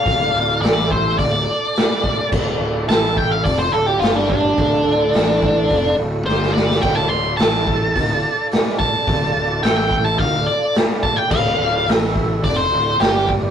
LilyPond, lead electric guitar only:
\new Staff \with { instrumentName = "Lead electric guitar" } { \time 4/4 \key d \minor \tempo 4 = 107 f''4 d''8 c''8 d''2 | r4 a''8 g''16 f''16 d''16 c''16 a'16 g'16 f'16 d'16 d'8~ | d'2~ d'8 r8 c''8 d''8 | g''16 a''16 c'''8 a''2 r8 a''8~ |
a''4 g''16 g''8 a''16 f''8 d''8 r8 a''16 g''16 | f''4 r4 d''16 c''8. g'8 r8 | }